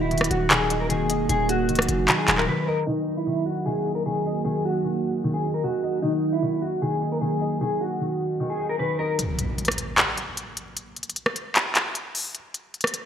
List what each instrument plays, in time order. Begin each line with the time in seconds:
Already playing: 808-style bass D#1, grand piano D#3, ambient pad D#3 F#3 A#3 F#4
0.01 clean electric guitar E4
0.11 grand piano D#3, closed hi-hat
0.18 cross-stick, closed hi-hat
0.24 closed hi-hat
0.30 808-style bass D#1, clean electric guitar F#4, closed hi-hat
0.50 grand piano D#3, clean electric guitar G#4, clap, closed hi-hat
0.70 grand piano D#4, closed hi-hat
0.80 clean electric guitar A#4
0.89 grand piano D#3, clean electric guitar G#4, closed hi-hat
1.00 808-style bass E1
1.10 grand piano D#5, closed hi-hat
1.29 808-style bass D#1, grand piano D#3, clean electric guitar G#4, closed hi-hat
1.49 clean electric guitar F#4, closed hi-hat
1.69 808-style bass C#1, grand piano D#3, closed hi-hat
1.75 cross-stick, closed hi-hat
1.82 closed hi-hat
1.89 808-style bass F#1, closed hi-hat
2.08 grand piano D#3, clap, closed hi-hat
2.18 clean electric guitar G#4
2.28 808-style bass D#1, grand piano D#4, clap, closed hi-hat
2.38 clean electric guitar A#4, clap
2.48 grand piano D#3, clean electric guitar B4
2.67 clean electric guitar A#4, grand piano D#5
2.87 ambient pad D#3 F#3 A#3 F#4, grand piano D#3, clean electric guitar D#4
3.17 clean electric guitar E4
3.27 grand piano D#3
3.46 clean electric guitar F#4
3.66 grand piano D#3, clean electric guitar G#4
3.86 grand piano D#4
3.95 clean electric guitar A#4
4.06 grand piano D#3, clean electric guitar G#4
4.26 grand piano D#5
4.45 grand piano D#3, clean electric guitar G#4
4.65 clean electric guitar F#4
4.84 grand piano D#3
5.24 grand piano D#3
5.34 clean electric guitar G#4
5.44 grand piano D#4
5.54 clean electric guitar A#4
5.64 grand piano D#3, clean electric guitar F#4
5.83 grand piano D#5
6.02 grand piano D#3, clean electric guitar D#4
6.33 clean electric guitar E4
6.43 grand piano D#3
6.62 clean electric guitar F#4
6.82 grand piano D#3, clean electric guitar G#4
7.02 grand piano D#4
7.12 clean electric guitar A#4
7.21 grand piano D#3, clean electric guitar G#4
7.41 grand piano D#5
7.61 grand piano D#3, clean electric guitar G#4
7.81 clean electric guitar F#4
8.01 grand piano D#3
8.40 grand piano D#3
8.50 clean electric guitar G#4
8.60 grand piano D#4
8.69 clean electric guitar A#4
8.79 grand piano D#3, clean electric guitar B4
8.99 clean electric guitar A#4, grand piano D#5
9.19 closed hi-hat, impact
9.39 closed hi-hat
9.58 closed hi-hat
9.65 cross-stick, closed hi-hat
9.72 closed hi-hat
9.78 closed hi-hat
9.98 clap, closed hi-hat
10.18 closed hi-hat
10.37 closed hi-hat
10.57 closed hi-hat
10.77 closed hi-hat
10.96 closed hi-hat
11.03 closed hi-hat
11.10 closed hi-hat
11.16 closed hi-hat
11.26 cross-stick
11.36 closed hi-hat
11.55 clap, closed hi-hat
11.75 clap, closed hi-hat
11.95 closed hi-hat
12.15 open hi-hat
12.35 closed hi-hat
12.54 closed hi-hat
12.74 closed hi-hat
12.81 cross-stick, closed hi-hat
12.87 closed hi-hat
12.94 closed hi-hat